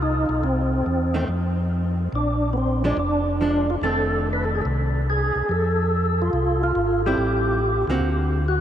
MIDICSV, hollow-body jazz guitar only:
0, 0, Header, 1, 2, 480
1, 0, Start_track
1, 0, Tempo, 421644
1, 505, Time_signature, 4, 2, 24, 8
1, 9797, End_track
2, 0, Start_track
2, 0, Title_t, "Hollow-body jazz guitar"
2, 0, Program_c, 0, 26
2, 1300, Note_on_c, 0, 51, 58
2, 1307, Note_on_c, 0, 57, 63
2, 1319, Note_on_c, 0, 60, 62
2, 1447, Note_off_c, 0, 51, 0
2, 1450, Note_off_c, 0, 57, 0
2, 1456, Note_off_c, 0, 60, 0
2, 3235, Note_on_c, 0, 53, 57
2, 3243, Note_on_c, 0, 56, 65
2, 3251, Note_on_c, 0, 62, 57
2, 3374, Note_off_c, 0, 53, 0
2, 3378, Note_off_c, 0, 56, 0
2, 3382, Note_off_c, 0, 62, 0
2, 3880, Note_on_c, 0, 53, 58
2, 3888, Note_on_c, 0, 56, 55
2, 3896, Note_on_c, 0, 62, 62
2, 4162, Note_off_c, 0, 53, 0
2, 4166, Note_off_c, 0, 56, 0
2, 4170, Note_off_c, 0, 62, 0
2, 4360, Note_on_c, 0, 51, 54
2, 4369, Note_on_c, 0, 57, 50
2, 4371, Note_on_c, 0, 60, 51
2, 5698, Note_off_c, 0, 51, 0
2, 5703, Note_off_c, 0, 57, 0
2, 5703, Note_off_c, 0, 60, 0
2, 8039, Note_on_c, 0, 55, 53
2, 8051, Note_on_c, 0, 60, 59
2, 8054, Note_on_c, 0, 64, 67
2, 8640, Note_off_c, 0, 55, 0
2, 8646, Note_off_c, 0, 60, 0
2, 8647, Note_off_c, 0, 64, 0
2, 8988, Note_on_c, 0, 50, 57
2, 8992, Note_on_c, 0, 58, 60
2, 8999, Note_on_c, 0, 60, 63
2, 9001, Note_on_c, 0, 66, 66
2, 9593, Note_off_c, 0, 50, 0
2, 9595, Note_off_c, 0, 58, 0
2, 9599, Note_off_c, 0, 60, 0
2, 9600, Note_off_c, 0, 66, 0
2, 9797, End_track
0, 0, End_of_file